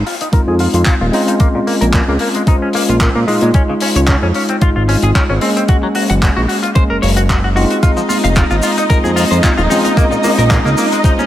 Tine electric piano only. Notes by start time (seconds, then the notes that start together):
0.32 G#3 C4 D#4 F4
1.12 G#3 C4 C#4 F4
2.46 G#3 C#4 F4 C5
3.27 G#3 D#4 F4
4.61 G#3 D#4 F4
5.41 G#3 A#3 C#4
6.74 G#3 A#3 C#4
7.55 G#3 C4 D#4 F4
8.89 G#3 C4 D#4 F4
9.70 G#3 C4 C#4 F4
11.03 G#3 C#4 F4 C5